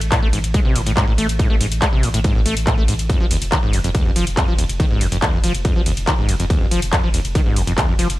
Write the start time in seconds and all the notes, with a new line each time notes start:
0.01 A1, closed hi-hat
0.12 A2, kick, clap, closed hi-hat, ride
0.22 A1 A3
0.33 A1 G#2, open hi-hat, ride
0.44 A1, closed hi-hat
0.54 G#3, kick, closed hi-hat, ride
0.65 A1 C3
0.75 A1 A2, open hi-hat, ride
0.86 A1 A2, closed hi-hat
0.97 G#2, kick, clap, closed hi-hat, ride
1.08 A1 A2
1.18 A1 A3, open hi-hat, ride
1.29 A1, closed hi-hat
1.39 A2, kick, closed hi-hat, ride
1.50 A1 A3
1.60 A1 G#2, open hi-hat, ride
1.72 A1, closed hi-hat
1.82 G#3, kick, clap, closed hi-hat, ride
1.93 A1 C3
2.03 A1 A2, open hi-hat, ride
2.14 A1 A2, closed hi-hat
2.24 G#2, kick, closed hi-hat, ride
2.35 A1 A2
2.45 A1 A3, open hi-hat, ride
2.57 A1, closed hi-hat
2.67 A2, kick, clap, closed hi-hat, ride
2.78 A1 A3
2.88 A1 G#2, open hi-hat, ride
2.99 A1, closed hi-hat
3.09 F2, kick, closed hi-hat, ride
3.20 F1 F3
3.31 F1 D#2, open hi-hat, ride
3.42 F1, closed hi-hat
3.52 D#3, kick, clap, closed hi-hat, ride
3.63 F1 G#2
3.73 F1 F2, open hi-hat, ride
3.84 F1 F2, closed hi-hat
3.95 D#2, kick, closed hi-hat, ride
4.06 F1 F2
4.16 F1 F3, open hi-hat, ride
4.27 F1, closed hi-hat
4.37 F2, kick, clap, closed hi-hat, ride
4.48 F1 F3
4.58 F1 D#2, open hi-hat, ride
4.69 F1, closed hi-hat
4.80 D#3, kick, closed hi-hat, ride
4.91 F1 G#2
5.01 F1 F2, open hi-hat, ride
5.12 F1 F2, closed hi-hat
5.22 D#2, kick, clap, closed hi-hat, ride
5.33 F1 F2
5.44 F1 F3, open hi-hat, ride
5.55 F1, closed hi-hat
5.65 F2, kick, closed hi-hat, ride
5.76 F1 F3
5.86 F1 D#2, open hi-hat, ride
5.97 F1, closed hi-hat
6.07 D#3, kick, clap, closed hi-hat, ride
6.18 F1 G#2
6.29 F1 F2, open hi-hat, ride
6.40 F1 F2, closed hi-hat
6.50 D#2, kick, closed hi-hat, ride
6.61 F1 F2
6.71 F1 F3, open hi-hat, ride
6.82 F1, closed hi-hat
6.92 F2, kick, clap, closed hi-hat, ride
7.03 F1 F3
7.14 F1 D#2, open hi-hat, ride
7.25 F1, closed hi-hat
7.35 D#3, kick, closed hi-hat, ride
7.46 F1 G#2
7.56 F1 F2, open hi-hat, ride
7.67 F1 F2, closed hi-hat
7.78 D#2, kick, clap, closed hi-hat, ride
7.89 F1 F2
7.99 F1 F3, open hi-hat, ride
8.10 F1, closed hi-hat